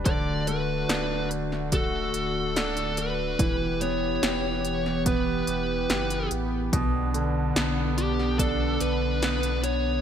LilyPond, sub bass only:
\new Staff \with { instrumentName = "Sub bass" } { \clef bass \time 4/4 \key b \minor \tempo 4 = 72 d,,4 d,,4. d,,4. | e,,4 e,,4. e,,8 fis,,8 a,,8 | b,,4 b,,4. b,,4. | }